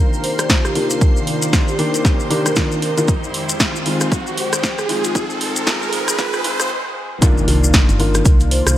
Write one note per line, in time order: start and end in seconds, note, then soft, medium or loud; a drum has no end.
0.00 3.04 C3 medium
0.00 0.73 D#3 medium
0.00 6.70 D#3 medium
0.00 7.18 D#3 medium
0.00 0.73 A#3 medium
0.00 0.73 D4 medium
0.00 3.04 D4 medium
0.00 0.73 F4 medium
0.00 3.04 F4 medium
0.00 0.62 G4 medium
0.00 5.11 G4 medium
0.00 0.99 A#4 medium
0.00 4.76 A#4 medium
0.00 6.70 C5 medium
0.00 3.82 D5 medium
0.00 6.70 F5 medium
0.00 6.70 C6 medium
0.00 riser medium
0.13 maracas soft
0.24 0.62 C5 medium
0.24 open hi-hat loud
0.39 cross-stick medium
0.39 closed hi-hat medium
0.39 maracas medium
0.50 kick loud
0.50 snare loud
0.50 closed hi-hat medium
0.50 maracas medium
0.65 0.83 G4 medium
0.65 cross-stick medium
0.65 maracas soft
0.75 1.76 D#3 medium
0.75 1.76 A#3 medium
0.75 1.76 D4 medium
0.75 1.77 F4 medium
0.75 open hi-hat medium
0.90 closed hi-hat medium
0.90 maracas medium
1.01 3.06 C5 medium
1.01 kick loud
1.01 closed hi-hat medium
1.01 maracas medium
1.17 maracas soft
1.27 open hi-hat loud
1.42 closed hi-hat medium
1.42 maracas medium
1.53 kick loud
1.53 snare loud
1.53 closed hi-hat soft
1.53 maracas medium
1.68 1.87 G4 medium
1.68 maracas soft
1.79 2.28 D#3 medium
1.79 2.28 A#3 medium
1.79 2.28 D4 medium
1.79 2.28 G4 loud
1.79 open hi-hat medium
1.94 closed hi-hat medium
1.94 maracas medium
2.05 kick loud
2.05 snare medium
2.05 closed hi-hat medium
2.05 maracas medium
2.20 maracas soft
2.30 2.46 D#3 medium
2.30 2.47 A#3 medium
2.30 2.47 D4 medium
2.30 2.47 G4 loud
2.30 2.43 A#4 medium
2.30 open hi-hat loud
2.46 2.98 A#4 medium
2.46 cross-stick medium
2.46 closed hi-hat medium
2.46 maracas medium
2.56 2.79 D#3 medium
2.56 2.79 A#3 medium
2.56 2.79 D4 medium
2.56 2.79 F4 loud
2.56 kick loud
2.56 snare loud
2.56 closed hi-hat medium
2.56 maracas medium
2.72 maracas soft
2.82 open hi-hat loud
2.97 3.07 D#3 medium
2.97 3.07 A#3 medium
2.97 3.07 D4 medium
2.97 3.07 F4 loud
2.97 closed hi-hat medium
2.97 maracas medium
3.08 7.18 F2 medium
3.08 7.18 G#3 medium
3.08 7.18 C4 medium
3.08 kick loud
3.08 closed hi-hat soft
3.08 maracas medium
3.24 maracas soft
3.34 open hi-hat loud
3.49 closed hi-hat medium
3.49 maracas medium
3.60 kick loud
3.60 snare loud
3.60 closed hi-hat soft
3.60 maracas medium
3.76 maracas soft
3.85 4.10 D#3 medium
3.85 4.10 G#3 medium
3.85 6.70 G#3 medium
3.85 4.10 C4 medium
3.85 4.10 F4 medium
3.85 open hi-hat medium
4.00 cross-stick medium
4.00 closed hi-hat medium
4.00 maracas medium
4.12 kick loud
4.12 closed hi-hat medium
4.12 maracas medium
4.27 maracas soft
4.37 4.76 C5 medium
4.37 open hi-hat loud
4.53 cross-stick medium
4.53 closed hi-hat medium
4.53 maracas medium
4.63 kick loud
4.63 snare loud
4.63 closed hi-hat medium
4.63 maracas medium
4.78 4.97 G#4 medium
4.78 cross-stick medium
4.78 maracas soft
4.89 5.13 D#3 medium
4.89 5.13 G#3 medium
4.89 5.14 C4 medium
4.89 5.14 F4 medium
4.89 open hi-hat loud
5.04 5.23 F4 medium
5.04 closed hi-hat medium
5.04 maracas medium
5.14 5.65 D#3 medium
5.14 5.65 G#3 medium
5.14 5.65 C4 medium
5.14 5.65 F4 medium
5.14 7.20 G#4 medium
5.14 kick loud
5.14 closed hi-hat medium
5.14 maracas medium
5.30 maracas soft
5.41 open hi-hat loud
5.56 closed hi-hat medium
5.56 maracas medium
5.66 6.16 D#3 medium
5.66 6.17 G#3 medium
5.66 6.17 C4 medium
5.66 6.17 F4 medium
5.66 kick loud
5.66 snare loud
5.66 closed hi-hat soft
5.66 maracas medium
5.82 5.89 G#4 medium
5.82 maracas soft
5.93 6.03 G#4 medium
5.93 open hi-hat loud
6.08 6.15 G#4 medium
6.08 cross-stick medium
6.08 closed hi-hat medium
6.08 maracas medium
6.18 6.42 D#3 medium
6.18 6.43 G#3 medium
6.18 6.43 C4 medium
6.18 6.43 F4 medium
6.18 kick loud
6.18 snare medium
6.18 closed hi-hat medium
6.18 maracas medium
6.33 6.70 F4 medium
6.33 cross-stick medium
6.33 maracas soft
6.44 6.68 D#3 medium
6.44 6.68 G#3 medium
6.44 6.69 C4 medium
6.44 6.69 F4 medium
6.44 open hi-hat loud
6.60 cross-stick medium
6.60 closed hi-hat medium
6.60 maracas medium
7.21 7.95 D#3 medium
7.21 8.78 D#3 medium
7.21 7.95 A#3 medium
7.21 8.78 A#3 medium
7.21 8.78 D4 medium
7.21 7.95 D4 medium
7.21 8.78 F4 medium
7.21 7.96 F4 loud
7.21 kick loud
7.21 closed hi-hat medium
7.21 impact medium
7.21 maracas medium
7.38 maracas soft
7.48 7.84 C2 medium
7.48 open hi-hat loud
7.64 8.78 A#4 medium
7.64 maracas medium
7.68 8.78 D5 medium
7.74 kick loud
7.74 snare loud
7.74 closed hi-hat medium
7.74 maracas medium
7.89 8.22 G1 loud
7.89 closed hi-hat soft
7.89 maracas soft
7.99 8.78 D#3 medium
7.99 8.78 A#3 medium
7.99 8.78 D4 medium
7.99 8.78 F4 medium
7.99 open hi-hat medium
8.14 cross-stick medium
8.14 closed hi-hat medium
8.14 maracas medium
8.25 8.62 C2 loud
8.25 kick loud
8.25 closed hi-hat medium
8.25 maracas medium
8.40 closed hi-hat soft
8.40 maracas soft
8.51 8.78 C5 medium
8.51 open hi-hat loud
8.67 8.78 C2 medium
8.67 cross-stick medium
8.67 closed hi-hat medium
8.67 maracas medium